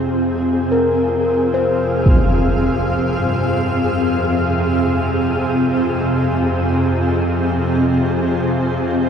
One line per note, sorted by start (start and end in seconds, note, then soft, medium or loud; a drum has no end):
0.00 9.09 F2 medium
0.00 9.09 C3 medium
0.00 9.09 C4 medium
0.00 9.09 F4 medium
0.00 9.09 G#4 medium
0.44 8.37 F5 medium
0.72 1.75 A#4 medium
1.54 8.08 C5 medium
2.06 impact medium
3.18 9.09 G2 soft
8.04 9.09 D#5 medium